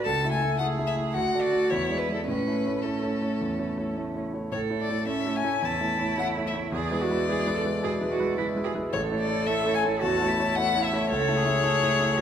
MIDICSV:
0, 0, Header, 1, 4, 480
1, 0, Start_track
1, 0, Key_signature, 3, "major"
1, 0, Tempo, 548446
1, 57, Time_signature, 4, 2, 24, 8
1, 1497, Tempo, 560748
1, 4857, Tempo, 545455
1, 10644, End_track
2, 0, Start_track
2, 0, Title_t, "Violin"
2, 0, Program_c, 0, 40
2, 41, Note_on_c, 0, 81, 80
2, 268, Note_off_c, 0, 81, 0
2, 273, Note_on_c, 0, 80, 66
2, 503, Note_off_c, 0, 80, 0
2, 508, Note_on_c, 0, 78, 75
2, 578, Note_off_c, 0, 78, 0
2, 761, Note_on_c, 0, 76, 66
2, 831, Note_off_c, 0, 76, 0
2, 988, Note_on_c, 0, 78, 67
2, 1234, Note_on_c, 0, 74, 69
2, 1247, Note_off_c, 0, 78, 0
2, 1488, Note_on_c, 0, 73, 66
2, 1501, Note_off_c, 0, 74, 0
2, 1727, Note_on_c, 0, 71, 59
2, 1739, Note_off_c, 0, 73, 0
2, 1852, Note_off_c, 0, 71, 0
2, 1867, Note_on_c, 0, 69, 53
2, 1966, Note_off_c, 0, 69, 0
2, 1971, Note_on_c, 0, 71, 66
2, 2452, Note_on_c, 0, 69, 50
2, 2465, Note_off_c, 0, 71, 0
2, 3417, Note_off_c, 0, 69, 0
2, 3903, Note_on_c, 0, 73, 61
2, 3971, Note_off_c, 0, 73, 0
2, 4151, Note_on_c, 0, 74, 63
2, 4369, Note_off_c, 0, 74, 0
2, 4375, Note_on_c, 0, 76, 69
2, 4622, Note_on_c, 0, 80, 71
2, 4635, Note_off_c, 0, 76, 0
2, 4868, Note_on_c, 0, 81, 63
2, 4881, Note_off_c, 0, 80, 0
2, 5338, Note_off_c, 0, 81, 0
2, 5343, Note_on_c, 0, 78, 71
2, 5414, Note_off_c, 0, 78, 0
2, 5594, Note_on_c, 0, 76, 59
2, 5664, Note_off_c, 0, 76, 0
2, 5828, Note_on_c, 0, 74, 75
2, 7485, Note_off_c, 0, 74, 0
2, 7755, Note_on_c, 0, 73, 73
2, 7826, Note_off_c, 0, 73, 0
2, 7984, Note_on_c, 0, 74, 71
2, 8226, Note_on_c, 0, 76, 83
2, 8240, Note_off_c, 0, 74, 0
2, 8469, Note_off_c, 0, 76, 0
2, 8474, Note_on_c, 0, 80, 79
2, 8545, Note_off_c, 0, 80, 0
2, 8715, Note_on_c, 0, 81, 80
2, 9185, Note_on_c, 0, 78, 96
2, 9198, Note_off_c, 0, 81, 0
2, 9439, Note_on_c, 0, 76, 77
2, 9452, Note_off_c, 0, 78, 0
2, 9657, Note_off_c, 0, 76, 0
2, 9662, Note_on_c, 0, 73, 101
2, 10644, Note_off_c, 0, 73, 0
2, 10644, End_track
3, 0, Start_track
3, 0, Title_t, "Cello"
3, 0, Program_c, 1, 42
3, 45, Note_on_c, 1, 69, 58
3, 525, Note_off_c, 1, 69, 0
3, 536, Note_on_c, 1, 68, 55
3, 998, Note_on_c, 1, 66, 64
3, 1011, Note_off_c, 1, 68, 0
3, 1498, Note_on_c, 1, 64, 56
3, 1510, Note_off_c, 1, 66, 0
3, 1978, Note_off_c, 1, 64, 0
3, 1994, Note_on_c, 1, 61, 45
3, 3639, Note_off_c, 1, 61, 0
3, 3908, Note_on_c, 1, 69, 56
3, 4349, Note_off_c, 1, 69, 0
3, 4376, Note_on_c, 1, 61, 49
3, 4840, Note_off_c, 1, 61, 0
3, 4845, Note_on_c, 1, 64, 68
3, 5795, Note_off_c, 1, 64, 0
3, 5823, Note_on_c, 1, 68, 59
3, 6066, Note_on_c, 1, 66, 56
3, 6079, Note_off_c, 1, 68, 0
3, 6293, Note_off_c, 1, 66, 0
3, 6298, Note_on_c, 1, 68, 58
3, 6532, Note_off_c, 1, 68, 0
3, 6537, Note_on_c, 1, 69, 61
3, 6608, Note_off_c, 1, 69, 0
3, 6795, Note_on_c, 1, 68, 66
3, 6866, Note_off_c, 1, 68, 0
3, 7025, Note_on_c, 1, 66, 60
3, 7262, Note_off_c, 1, 66, 0
3, 7268, Note_on_c, 1, 64, 60
3, 7338, Note_off_c, 1, 64, 0
3, 7502, Note_on_c, 1, 68, 61
3, 7573, Note_off_c, 1, 68, 0
3, 7753, Note_on_c, 1, 69, 69
3, 8709, Note_on_c, 1, 66, 76
3, 8723, Note_off_c, 1, 69, 0
3, 8941, Note_on_c, 1, 64, 64
3, 8954, Note_off_c, 1, 66, 0
3, 9651, Note_off_c, 1, 64, 0
3, 9657, Note_on_c, 1, 69, 72
3, 9900, Note_on_c, 1, 68, 71
3, 9913, Note_off_c, 1, 69, 0
3, 10610, Note_on_c, 1, 66, 77
3, 10623, Note_off_c, 1, 68, 0
3, 10644, Note_off_c, 1, 66, 0
3, 10644, End_track
4, 0, Start_track
4, 0, Title_t, "Grand piano"
4, 0, Program_c, 2, 0
4, 0, Control_c, 2, 64, 127
4, 50, Note_on_c, 2, 37, 57
4, 73, Control_c, 2, 64, 0
4, 207, Note_off_c, 2, 37, 0
4, 214, Note_on_c, 2, 57, 43
4, 218, Note_on_c, 2, 64, 44
4, 223, Note_on_c, 2, 76, 45
4, 225, Control_c, 2, 64, 127
4, 354, Note_off_c, 2, 57, 0
4, 354, Note_off_c, 2, 64, 0
4, 361, Note_off_c, 2, 76, 0
4, 367, Note_on_c, 2, 57, 41
4, 368, Note_on_c, 2, 64, 41
4, 374, Note_on_c, 2, 76, 44
4, 512, Note_off_c, 2, 57, 0
4, 513, Note_off_c, 2, 64, 0
4, 516, Note_off_c, 2, 76, 0
4, 529, Note_on_c, 2, 57, 42
4, 532, Note_on_c, 2, 64, 42
4, 534, Note_on_c, 2, 76, 44
4, 673, Note_off_c, 2, 57, 0
4, 675, Note_off_c, 2, 64, 0
4, 676, Note_off_c, 2, 76, 0
4, 691, Note_on_c, 2, 57, 44
4, 691, Note_on_c, 2, 64, 41
4, 694, Note_on_c, 2, 76, 45
4, 828, Note_off_c, 2, 57, 0
4, 834, Note_off_c, 2, 64, 0
4, 836, Note_off_c, 2, 76, 0
4, 842, Note_on_c, 2, 57, 39
4, 847, Note_on_c, 2, 64, 37
4, 849, Note_on_c, 2, 76, 45
4, 990, Note_off_c, 2, 57, 0
4, 993, Note_off_c, 2, 64, 0
4, 994, Note_off_c, 2, 76, 0
4, 1012, Note_on_c, 2, 38, 50
4, 1029, Control_c, 2, 64, 0
4, 1168, Note_off_c, 2, 38, 0
4, 1173, Note_on_c, 2, 57, 40
4, 1177, Note_on_c, 2, 66, 38
4, 1182, Note_on_c, 2, 74, 44
4, 1191, Control_c, 2, 64, 127
4, 1318, Note_off_c, 2, 57, 0
4, 1321, Note_off_c, 2, 66, 0
4, 1323, Note_off_c, 2, 74, 0
4, 1332, Note_on_c, 2, 57, 41
4, 1335, Note_on_c, 2, 66, 40
4, 1341, Note_on_c, 2, 74, 43
4, 1480, Note_off_c, 2, 57, 0
4, 1481, Note_off_c, 2, 66, 0
4, 1484, Note_off_c, 2, 74, 0
4, 1503, Note_on_c, 2, 40, 50
4, 1512, Control_c, 2, 64, 0
4, 1655, Note_off_c, 2, 40, 0
4, 1658, Note_on_c, 2, 56, 35
4, 1666, Note_on_c, 2, 64, 33
4, 1669, Note_on_c, 2, 74, 37
4, 1679, Control_c, 2, 64, 127
4, 1802, Note_off_c, 2, 56, 0
4, 1806, Note_off_c, 2, 64, 0
4, 1807, Note_off_c, 2, 74, 0
4, 1820, Note_on_c, 2, 56, 32
4, 1824, Note_on_c, 2, 64, 34
4, 1828, Note_on_c, 2, 74, 39
4, 1964, Note_off_c, 2, 56, 0
4, 1965, Note_off_c, 2, 64, 0
4, 1968, Note_off_c, 2, 74, 0
4, 1986, Note_on_c, 2, 45, 42
4, 1996, Control_c, 2, 64, 0
4, 2139, Note_off_c, 2, 45, 0
4, 2148, Note_on_c, 2, 57, 34
4, 2153, Note_on_c, 2, 64, 33
4, 2157, Note_on_c, 2, 73, 35
4, 2164, Control_c, 2, 64, 127
4, 2289, Note_off_c, 2, 57, 0
4, 2291, Note_off_c, 2, 64, 0
4, 2294, Note_off_c, 2, 73, 0
4, 2314, Note_on_c, 2, 57, 32
4, 2318, Note_on_c, 2, 64, 29
4, 2318, Note_on_c, 2, 73, 34
4, 2452, Note_off_c, 2, 57, 0
4, 2454, Note_off_c, 2, 64, 0
4, 2454, Note_off_c, 2, 73, 0
4, 2473, Note_on_c, 2, 57, 29
4, 2474, Note_on_c, 2, 64, 33
4, 2476, Note_on_c, 2, 73, 35
4, 2611, Note_off_c, 2, 57, 0
4, 2612, Note_off_c, 2, 64, 0
4, 2613, Note_off_c, 2, 73, 0
4, 2624, Note_on_c, 2, 57, 31
4, 2626, Note_on_c, 2, 64, 31
4, 2630, Note_on_c, 2, 73, 36
4, 2766, Note_off_c, 2, 57, 0
4, 2767, Note_off_c, 2, 64, 0
4, 2770, Note_off_c, 2, 73, 0
4, 2784, Note_on_c, 2, 57, 31
4, 2789, Note_on_c, 2, 64, 31
4, 2791, Note_on_c, 2, 73, 34
4, 2926, Note_off_c, 2, 57, 0
4, 2929, Note_off_c, 2, 64, 0
4, 2930, Note_off_c, 2, 73, 0
4, 2951, Note_on_c, 2, 40, 34
4, 3101, Note_off_c, 2, 40, 0
4, 3104, Note_on_c, 2, 57, 31
4, 3104, Note_on_c, 2, 64, 30
4, 3107, Note_on_c, 2, 73, 36
4, 3247, Note_off_c, 2, 57, 0
4, 3247, Note_off_c, 2, 64, 0
4, 3249, Note_off_c, 2, 73, 0
4, 3267, Note_on_c, 2, 57, 32
4, 3267, Note_on_c, 2, 73, 34
4, 3269, Note_on_c, 2, 64, 33
4, 3409, Note_off_c, 2, 57, 0
4, 3409, Note_off_c, 2, 73, 0
4, 3410, Note_off_c, 2, 64, 0
4, 3428, Note_on_c, 2, 57, 32
4, 3433, Note_on_c, 2, 64, 30
4, 3433, Note_on_c, 2, 73, 34
4, 3571, Note_off_c, 2, 57, 0
4, 3573, Note_off_c, 2, 64, 0
4, 3573, Note_off_c, 2, 73, 0
4, 3590, Note_on_c, 2, 57, 30
4, 3592, Note_on_c, 2, 64, 30
4, 3594, Note_on_c, 2, 73, 33
4, 3729, Note_off_c, 2, 57, 0
4, 3733, Note_off_c, 2, 64, 0
4, 3735, Note_off_c, 2, 73, 0
4, 3742, Note_on_c, 2, 57, 29
4, 3746, Note_on_c, 2, 64, 28
4, 3754, Note_on_c, 2, 73, 34
4, 3887, Note_off_c, 2, 57, 0
4, 3890, Note_off_c, 2, 64, 0
4, 3894, Note_off_c, 2, 73, 0
4, 3901, Note_on_c, 2, 45, 46
4, 3921, Control_c, 2, 64, 0
4, 4057, Note_off_c, 2, 45, 0
4, 4058, Note_on_c, 2, 57, 40
4, 4062, Note_on_c, 2, 64, 37
4, 4066, Note_on_c, 2, 73, 41
4, 4089, Control_c, 2, 64, 127
4, 4203, Note_off_c, 2, 57, 0
4, 4206, Note_off_c, 2, 64, 0
4, 4208, Note_off_c, 2, 73, 0
4, 4219, Note_on_c, 2, 57, 34
4, 4223, Note_on_c, 2, 64, 36
4, 4230, Note_on_c, 2, 73, 37
4, 4356, Note_off_c, 2, 57, 0
4, 4361, Note_off_c, 2, 64, 0
4, 4362, Note_off_c, 2, 73, 0
4, 4369, Note_on_c, 2, 57, 35
4, 4374, Note_on_c, 2, 64, 35
4, 4375, Note_on_c, 2, 73, 38
4, 4515, Note_off_c, 2, 57, 0
4, 4519, Note_off_c, 2, 64, 0
4, 4520, Note_off_c, 2, 73, 0
4, 4528, Note_on_c, 2, 57, 39
4, 4534, Note_on_c, 2, 64, 39
4, 4540, Note_on_c, 2, 73, 41
4, 4672, Note_off_c, 2, 57, 0
4, 4678, Note_off_c, 2, 64, 0
4, 4682, Note_off_c, 2, 73, 0
4, 4685, Note_on_c, 2, 57, 40
4, 4691, Note_on_c, 2, 64, 42
4, 4697, Note_on_c, 2, 73, 43
4, 4833, Note_off_c, 2, 57, 0
4, 4836, Note_off_c, 2, 64, 0
4, 4840, Note_off_c, 2, 73, 0
4, 4846, Note_on_c, 2, 40, 44
4, 5002, Note_on_c, 2, 57, 41
4, 5008, Note_off_c, 2, 40, 0
4, 5009, Note_on_c, 2, 64, 40
4, 5010, Note_on_c, 2, 73, 42
4, 5154, Note_off_c, 2, 57, 0
4, 5158, Note_off_c, 2, 64, 0
4, 5159, Note_off_c, 2, 73, 0
4, 5167, Note_on_c, 2, 57, 40
4, 5171, Note_on_c, 2, 64, 39
4, 5176, Note_on_c, 2, 73, 41
4, 5316, Note_off_c, 2, 57, 0
4, 5319, Note_off_c, 2, 64, 0
4, 5322, Note_off_c, 2, 73, 0
4, 5329, Note_on_c, 2, 57, 42
4, 5335, Note_on_c, 2, 64, 43
4, 5336, Note_on_c, 2, 73, 43
4, 5478, Note_off_c, 2, 57, 0
4, 5481, Note_off_c, 2, 64, 0
4, 5481, Note_off_c, 2, 73, 0
4, 5501, Note_on_c, 2, 57, 39
4, 5502, Note_on_c, 2, 64, 41
4, 5505, Note_on_c, 2, 73, 46
4, 5644, Note_off_c, 2, 57, 0
4, 5645, Note_off_c, 2, 64, 0
4, 5646, Note_off_c, 2, 73, 0
4, 5659, Note_on_c, 2, 57, 41
4, 5662, Note_on_c, 2, 64, 39
4, 5666, Note_on_c, 2, 73, 43
4, 5804, Note_off_c, 2, 57, 0
4, 5805, Note_off_c, 2, 64, 0
4, 5808, Note_off_c, 2, 73, 0
4, 5810, Note_on_c, 2, 40, 54
4, 5837, Control_c, 2, 64, 0
4, 5967, Control_c, 2, 64, 127
4, 5972, Note_off_c, 2, 40, 0
4, 5979, Note_on_c, 2, 56, 42
4, 5983, Note_on_c, 2, 64, 43
4, 5986, Note_on_c, 2, 71, 43
4, 6125, Note_off_c, 2, 56, 0
4, 6127, Note_off_c, 2, 64, 0
4, 6129, Note_off_c, 2, 71, 0
4, 6150, Note_on_c, 2, 56, 38
4, 6154, Note_on_c, 2, 64, 39
4, 6157, Note_on_c, 2, 71, 46
4, 6292, Note_off_c, 2, 56, 0
4, 6294, Note_off_c, 2, 64, 0
4, 6296, Note_off_c, 2, 71, 0
4, 6306, Note_on_c, 2, 56, 39
4, 6311, Note_on_c, 2, 64, 43
4, 6315, Note_on_c, 2, 71, 48
4, 6451, Note_off_c, 2, 56, 0
4, 6454, Note_off_c, 2, 64, 0
4, 6456, Note_off_c, 2, 71, 0
4, 6469, Note_on_c, 2, 56, 42
4, 6475, Note_on_c, 2, 64, 42
4, 6476, Note_on_c, 2, 71, 49
4, 6613, Note_off_c, 2, 56, 0
4, 6616, Note_off_c, 2, 64, 0
4, 6617, Note_off_c, 2, 71, 0
4, 6630, Note_on_c, 2, 56, 42
4, 6635, Note_on_c, 2, 64, 41
4, 6638, Note_on_c, 2, 71, 45
4, 6773, Note_off_c, 2, 56, 0
4, 6776, Note_off_c, 2, 64, 0
4, 6778, Note_off_c, 2, 71, 0
4, 6784, Note_on_c, 2, 47, 50
4, 6942, Note_off_c, 2, 47, 0
4, 6946, Note_on_c, 2, 56, 47
4, 6948, Note_on_c, 2, 64, 45
4, 6955, Note_on_c, 2, 71, 51
4, 7092, Note_off_c, 2, 56, 0
4, 7094, Note_off_c, 2, 64, 0
4, 7097, Note_off_c, 2, 71, 0
4, 7107, Note_on_c, 2, 56, 44
4, 7107, Note_on_c, 2, 64, 43
4, 7112, Note_on_c, 2, 71, 47
4, 7250, Note_off_c, 2, 56, 0
4, 7254, Note_off_c, 2, 64, 0
4, 7257, Note_off_c, 2, 71, 0
4, 7263, Note_on_c, 2, 56, 47
4, 7267, Note_on_c, 2, 64, 44
4, 7274, Note_on_c, 2, 71, 49
4, 7412, Note_off_c, 2, 56, 0
4, 7415, Note_off_c, 2, 64, 0
4, 7418, Note_off_c, 2, 71, 0
4, 7430, Note_on_c, 2, 56, 43
4, 7433, Note_on_c, 2, 64, 44
4, 7437, Note_on_c, 2, 71, 50
4, 7577, Note_off_c, 2, 56, 0
4, 7579, Note_off_c, 2, 64, 0
4, 7581, Note_off_c, 2, 71, 0
4, 7597, Note_on_c, 2, 56, 43
4, 7600, Note_on_c, 2, 64, 44
4, 7600, Note_on_c, 2, 71, 49
4, 7741, Note_off_c, 2, 56, 0
4, 7742, Note_off_c, 2, 71, 0
4, 7743, Note_off_c, 2, 64, 0
4, 7754, Note_on_c, 2, 33, 56
4, 7771, Control_c, 2, 64, 0
4, 7910, Note_off_c, 2, 33, 0
4, 7914, Control_c, 2, 64, 127
4, 7916, Note_on_c, 2, 57, 48
4, 7918, Note_on_c, 2, 64, 45
4, 7925, Note_on_c, 2, 73, 51
4, 8058, Note_off_c, 2, 57, 0
4, 8060, Note_off_c, 2, 64, 0
4, 8064, Note_off_c, 2, 73, 0
4, 8071, Note_on_c, 2, 57, 48
4, 8077, Note_on_c, 2, 64, 41
4, 8081, Note_on_c, 2, 73, 48
4, 8216, Note_off_c, 2, 57, 0
4, 8219, Note_off_c, 2, 64, 0
4, 8221, Note_off_c, 2, 73, 0
4, 8234, Note_on_c, 2, 57, 50
4, 8236, Note_on_c, 2, 64, 47
4, 8241, Note_on_c, 2, 73, 50
4, 8377, Note_off_c, 2, 57, 0
4, 8379, Note_off_c, 2, 64, 0
4, 8381, Note_off_c, 2, 73, 0
4, 8398, Note_on_c, 2, 57, 49
4, 8399, Note_on_c, 2, 64, 46
4, 8404, Note_on_c, 2, 73, 52
4, 8540, Note_off_c, 2, 57, 0
4, 8540, Note_off_c, 2, 64, 0
4, 8543, Note_off_c, 2, 73, 0
4, 8563, Note_on_c, 2, 57, 45
4, 8567, Note_on_c, 2, 64, 50
4, 8569, Note_on_c, 2, 73, 53
4, 8703, Note_off_c, 2, 57, 0
4, 8705, Note_off_c, 2, 64, 0
4, 8706, Note_off_c, 2, 73, 0
4, 8720, Note_on_c, 2, 40, 53
4, 8871, Note_off_c, 2, 40, 0
4, 8887, Note_on_c, 2, 57, 51
4, 8891, Note_on_c, 2, 64, 51
4, 8891, Note_on_c, 2, 73, 55
4, 9023, Note_off_c, 2, 57, 0
4, 9025, Note_off_c, 2, 64, 0
4, 9025, Note_off_c, 2, 73, 0
4, 9046, Note_on_c, 2, 64, 50
4, 9048, Note_on_c, 2, 57, 46
4, 9052, Note_on_c, 2, 73, 53
4, 9181, Note_off_c, 2, 64, 0
4, 9182, Note_off_c, 2, 57, 0
4, 9185, Note_off_c, 2, 73, 0
4, 9202, Note_on_c, 2, 57, 51
4, 9210, Note_on_c, 2, 64, 49
4, 9211, Note_on_c, 2, 73, 55
4, 9338, Note_off_c, 2, 57, 0
4, 9342, Note_off_c, 2, 64, 0
4, 9343, Note_off_c, 2, 73, 0
4, 9358, Note_on_c, 2, 57, 50
4, 9358, Note_on_c, 2, 64, 51
4, 9360, Note_on_c, 2, 73, 53
4, 9495, Note_off_c, 2, 57, 0
4, 9495, Note_off_c, 2, 64, 0
4, 9496, Note_off_c, 2, 73, 0
4, 9515, Note_on_c, 2, 57, 51
4, 9517, Note_on_c, 2, 64, 52
4, 9520, Note_on_c, 2, 73, 51
4, 9652, Note_off_c, 2, 57, 0
4, 9654, Note_off_c, 2, 64, 0
4, 9656, Note_off_c, 2, 73, 0
4, 9669, Note_on_c, 2, 37, 69
4, 9679, Control_c, 2, 64, 0
4, 9819, Note_off_c, 2, 37, 0
4, 9825, Control_c, 2, 64, 127
4, 9827, Note_on_c, 2, 57, 56
4, 9831, Note_on_c, 2, 64, 49
4, 9836, Note_on_c, 2, 76, 55
4, 9967, Note_off_c, 2, 57, 0
4, 9968, Note_off_c, 2, 64, 0
4, 9971, Note_off_c, 2, 76, 0
4, 9981, Note_on_c, 2, 57, 53
4, 9982, Note_on_c, 2, 64, 48
4, 9988, Note_on_c, 2, 76, 51
4, 10122, Note_off_c, 2, 57, 0
4, 10123, Note_off_c, 2, 64, 0
4, 10127, Note_off_c, 2, 76, 0
4, 10135, Note_on_c, 2, 57, 51
4, 10138, Note_on_c, 2, 64, 48
4, 10142, Note_on_c, 2, 76, 56
4, 10280, Note_off_c, 2, 57, 0
4, 10281, Note_off_c, 2, 64, 0
4, 10284, Note_off_c, 2, 76, 0
4, 10303, Note_on_c, 2, 57, 53
4, 10310, Note_on_c, 2, 64, 52
4, 10312, Note_on_c, 2, 76, 59
4, 10444, Note_off_c, 2, 57, 0
4, 10448, Note_off_c, 2, 64, 0
4, 10449, Note_off_c, 2, 76, 0
4, 10459, Note_on_c, 2, 57, 51
4, 10464, Note_on_c, 2, 64, 51
4, 10467, Note_on_c, 2, 76, 57
4, 10602, Note_off_c, 2, 57, 0
4, 10605, Note_off_c, 2, 64, 0
4, 10607, Note_off_c, 2, 76, 0
4, 10615, Note_on_c, 2, 37, 58
4, 10644, Note_off_c, 2, 37, 0
4, 10644, End_track
0, 0, End_of_file